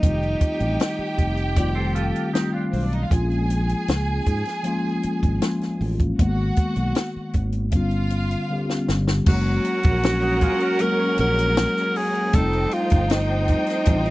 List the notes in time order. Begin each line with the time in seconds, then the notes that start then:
Already playing: D#4
0.03 F1 D#3 G3 A3 C4 F4 G4 G5, kick, closed hi-hat
0.23 closed hi-hat
0.41 kick, closed hi-hat
0.60 A1, closed hi-hat
0.80 snare, closed hi-hat
0.99 muted fingered electric bass stroke
1.18 F1, kick, closed hi-hat
1.37 closed hi-hat
1.56 D#3 G3 A3 C4 F4 D5, kick, closed hi-hat
1.75 A4 C5
1.95 F4 A4, closed hi-hat
2.16 closed hi-hat
2.33 D#3 G3 A3 C4 D#4 F4 G4, snare, closed hi-hat
2.53 D4 F4
2.71 B1 C4 C5, open hi-hat
2.83 D4 D5
2.92 D#4 D#5, closed hi-hat
3.01 F4 F5
3.10 A#1 F3 G#3 A#3 C#4 F4 G#4 G#5, kick, closed hi-hat
3.31 closed hi-hat
3.50 closed hi-hat
3.69 closed hi-hat
3.88 C#2, snare, closed hi-hat
4.26 G#2, kick, closed hi-hat
4.45 snare, closed hi-hat
4.63 F3 G#3 A#3 C#4 F4, closed hi-hat
5.03 muted fingered electric bass stroke, closed hi-hat
5.23 G#1, kick, closed hi-hat
5.40 F3 G#3 A#3 C#4 F4, snare, closed hi-hat
5.61 snare, closed hi-hat
5.81 A1, open hi-hat
6.00 kick, closed hi-hat
6.18 G#1 D#3 G#3 A#3 B3 F#4 F#5, kick, closed hi-hat
6.22 F4
6.29 F#4
6.56 kick, closed hi-hat
6.76 B1, closed hi-hat
6.95 snare, closed hi-hat
7.16 muted fingered electric bass stroke
7.33 G#1, kick, closed hi-hat
7.52 closed hi-hat
7.71 G1 D3 G3 B3 F4 F5, kick, closed hi-hat
7.76 C#4 F4
7.91 closed hi-hat
8.10 closed hi-hat
8.31 closed hi-hat
8.49 D3 G3 B3 C#4 G4
8.70 snare
8.88 G1, snare
9.07 snare
9.26 F#1 F#3 G#3 A#3 C#4 F#4 A#4 F#5, kick, crash
9.31 F#4
9.46 closed hi-hat
9.65 closed hi-hat
9.83 A#1, kick, closed hi-hat
10.03 snare, closed hi-hat
10.22 D#4 F#4, closed hi-hat
10.41 F4 G#4, kick, closed hi-hat
10.60 F#4 A#4, closed hi-hat
10.79 F#3 G#3 A#3 C#4 A#4, closed hi-hat
10.83 F#4
10.90 G#4
10.99 A#4 C#5
11.18 A#1 A#4, closed hi-hat
11.39 closed hi-hat
11.57 snare, closed hi-hat
11.76 snare
11.96 G#4, open hi-hat
12.15 closed hi-hat
12.32 F1 F3 G3 A3 C4 D#4 A4 C5 G5, kick, closed hi-hat
12.36 F4
12.53 closed hi-hat
12.71 F4, closed hi-hat
12.90 G1, kick, closed hi-hat
13.10 D#4, snare, closed hi-hat
13.48 kick, closed hi-hat
13.66 snare, closed hi-hat
13.85 A1 G3 A3 C4, kick, closed hi-hat
13.90 D#4 F4
14.06 closed hi-hat